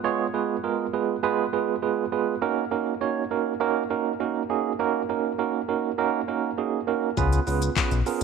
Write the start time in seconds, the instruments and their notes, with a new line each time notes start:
0.04 tine electric piano G#3 B3 F4 G#4 C#5
0.34 tine electric piano G#3 B3 F4 G#4 B4
0.63 tine electric piano G#3 B3 F4 G#4 A#4
0.93 tine electric piano G#3 B3 F4 G#4 B4
1.23 tine electric piano G#3 B3 F4 G#4 B4
1.53 tine electric piano G#3 B3 F4 G#4 B4
1.82 tine electric piano G#3 B3 F4 G#4 B4
2.12 tine electric piano G#3 B3 F4 G#4 B4
2.42 tine electric piano A#3 C#4 D#4 F#4 A#4
2.71 tine electric piano A#3 C#4 D#4 F#4 A#4
3.01 tine electric piano A#3 C#4 D#4 F#4 C#5
3.31 tine electric piano A#3 C#4 D#4 F#4 A#4
3.60 tine electric piano A#3 C#4 D#4 F#4 A#4
3.90 tine electric piano A#3 C#4 D#4 F#4 A#4
4.20 tine electric piano A#3 C#4 D#4 F#4 A#4
4.50 tine electric piano A#3 C#4 D#4 F#4 G#4
4.79 tine electric piano A#3 C#4 D#4 F#4 A#4
5.09 tine electric piano A#3 C#4 D#4 F#4 A#4
5.39 tine electric piano A#3 C#4 D#4 F#4 A#4
5.68 tine electric piano A#3 C#4 D#4 F#4 A#4
5.98 tine electric piano A#3 C#4 D#4 F#4 A#4
6.28 tine electric piano A#3 C#4 D#4 F#4 A#4
6.58 tine electric piano A#3 C#4 D#4 F#4 G#4
6.87 tine electric piano A#3 C#4 D#4 F#4 A#4
7.17 analog synth bass C#2, tine electric piano B3 C#4 F4 G#4 B4, kick, shaker
7.32 closed hi-hat, shaker
7.47 analog synth bass C#2, tine electric piano B3 C#4 F4 G#4 B4, open hi-hat, shaker
7.62 closed hi-hat, shaker
7.76 tine electric piano B3 C#4 F4 G#4 B4, kick, clap, shaker
7.91 analog synth bass B1, closed hi-hat, shaker
8.06 tine electric piano B3 C#4 F4 G#4 A#4, open hi-hat, shaker